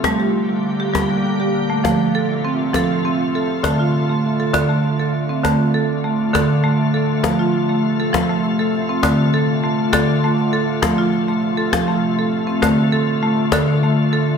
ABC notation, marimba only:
X:1
M:6/8
L:1/16
Q:3/8=67
K:Dm
V:1 name="Marimba"
A, G2 G,2 G2 G,2 G2 A, | A,2 A2 C2 A2 C2 A2 | A, F2 A,2 A2 A,2 A2 C | A,2 A2 A,2 A2 A,2 A2 |
A, F2 A,2 A2 A,2 A2 C | A,2 A2 A,2 A2 A,2 A2 | A, F2 A,2 A2 A,2 A2 C | A,2 A2 A,2 A2 A,2 A2 |]
V:2 name="Marimba" clef=bass
G,2 z4 G,6 | F,2 z4 F,6 | D,2 z4 D,6 | D,6 D,6 |
F,6 F,6 | D,6 D,6 | F,6 F,6 | D,6 D,6 |]